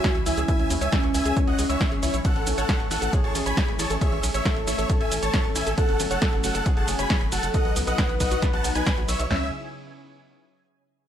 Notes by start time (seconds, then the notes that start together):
Already playing: E3 G#3 C#4 F#4 E5 G#5
0.04 C#5, kick, snare, closed hi-hat, shaker
0.15 C#2 C#6, closed hi-hat
0.26 C#2 E4 E5 G#5, open hi-hat, shaker
0.37 C#2 G#4, closed hi-hat, shaker
0.48 C#4 E5 G#5, kick, closed hi-hat, shaker
0.59 C#2 C#4, closed hi-hat
0.70 D#2 C#4, open hi-hat, shaker
0.81 C#2 C#5 E5 G#5, closed hi-hat, shaker
0.92 C#4 G#4, kick, snare, closed hi-hat, shaker
1.03 C#2 C#6, closed hi-hat
1.14 C#2 E4 E5 G#5, open hi-hat, shaker
1.25 C#2 G#4, closed hi-hat, shaker
1.37 C#5, kick, closed hi-hat, shaker
1.47 C#2 G#4 D#5 F#5, closed hi-hat
1.59 C#2 G#4, open hi-hat, shaker
1.69 C#2 E4 C#5 E5, closed hi-hat, shaker
1.81 C#5, kick, snare, closed hi-hat, shaker
1.92 G#1 G#4, closed hi-hat
2.03 C#2 C#4 E4 C#5, open hi-hat, shaker
2.14 B1 C#5, closed hi-hat, shaker
2.25 A3 C#4 A4 F#5, kick, closed hi-hat, ride, shaker
2.36 A1 C#4, closed hi-hat
2.47 B1 C#4, open hi-hat, ride, shaker
2.58 A1 A4 C#5 F#5, closed hi-hat, shaker
2.69 A4, kick, snare, closed hi-hat, ride, shaker
2.80 A1 C#6, closed hi-hat
2.91 A1 E4 A4 F#5, open hi-hat, ride, shaker
3.02 A1 A4, closed hi-hat, shaker
3.13 G#4 C#5, kick, closed hi-hat, ride, shaker
3.24 A1 A4 C#5 A5, closed hi-hat
3.35 A1 C#4, open hi-hat, ride, shaker
3.46 A1 C#5 G#5 B5, closed hi-hat, shaker
3.57 C#5, kick, snare, closed hi-hat, ride, shaker
3.68 A1 C#6, closed hi-hat
3.79 A1 E4 G#4 C#5 A5, open hi-hat, ride, shaker
3.90 A1 A4, closed hi-hat, shaker
4.01 C#4 C#5 E5, kick, closed hi-hat, ride, shaker
4.12 A1 C#4, closed hi-hat
4.23 B1 C#4, open hi-hat, ride, shaker
4.34 A1 C#5 E5, closed hi-hat, shaker
4.45 A4, kick, snare, closed hi-hat, ride, shaker
4.56 A1 C#6, closed hi-hat
4.67 A1 E4 C#5 E5, open hi-hat, ride, shaker
4.78 A1 A4, closed hi-hat, shaker
4.89 C#5, kick, closed hi-hat, ride, shaker
5.00 A1 A4 E5 G#5, closed hi-hat
5.11 A1 C#4, open hi-hat, ride, shaker
5.22 A1 C#5 A5, closed hi-hat, shaker
5.34 C#5, kick, snare, closed hi-hat, ride, shaker
5.45 A1 C#6, closed hi-hat
5.55 A1 E4 E5 G#5, open hi-hat, ride, shaker
5.67 A1 A4, closed hi-hat, shaker
5.77 F#3 C#4 A4 F#5, kick, closed hi-hat, ride, shaker
5.89 F#1 C#4, closed hi-hat
6.00 G#1 C#4, open hi-hat, ride, shaker
6.11 F#1 A4 C#5 F#5, closed hi-hat, shaker
6.22 A4, kick, snare, closed hi-hat, ride, shaker
6.33 F#1 C#6, closed hi-hat
6.44 F#1 F#4 A4 F#5, open hi-hat, ride, shaker
6.55 F#1 A4, closed hi-hat, shaker
6.66 G#4 C#5, kick, closed hi-hat, ride, shaker
6.77 F#1 A4 F#5 A5, closed hi-hat
6.88 F#1 C#4, open hi-hat, ride, shaker
6.99 F#1 C#5 G#5 B5, closed hi-hat, shaker
7.10 C#5, kick, snare, closed hi-hat, ride, shaker
7.21 F#1 C#6, closed hi-hat
7.32 F#1 F#4 A4 F#5 A5, open hi-hat, ride, shaker
7.43 F#1 A4, closed hi-hat, shaker
7.54 B3 D#4 D#5 F#5, kick, closed hi-hat, ride, shaker
7.65 B1 B3, closed hi-hat
7.76 C#2 B3, open hi-hat, ride, shaker
7.87 B1 B4 D#5 F#5, closed hi-hat, shaker
7.98 F#4 B4, kick, snare, closed hi-hat, ride, shaker
8.09 B1 B5, closed hi-hat
8.20 B1 D#4 D#5 F#5, kick, open hi-hat, ride, shaker
8.31 B1 F#4, closed hi-hat, shaker
8.42 B4, kick, snare, closed hi-hat, ride, shaker
8.53 B1 F#4 F#5 A5, closed hi-hat
8.64 B1 F#5, open hi-hat, ride, shaker
8.75 B1 D#4 B4 G#5, closed hi-hat, shaker
8.87 B5, kick, snare, closed hi-hat, ride, shaker
8.97 B1 F#4, closed hi-hat
9.08 B1 B4 C#5 E5, open hi-hat, ride, shaker
9.20 B1 D#5, closed hi-hat, shaker
9.30 C#2 C#3 C#4 E4 G#4 C#5 E5 G#5, snare, floor tom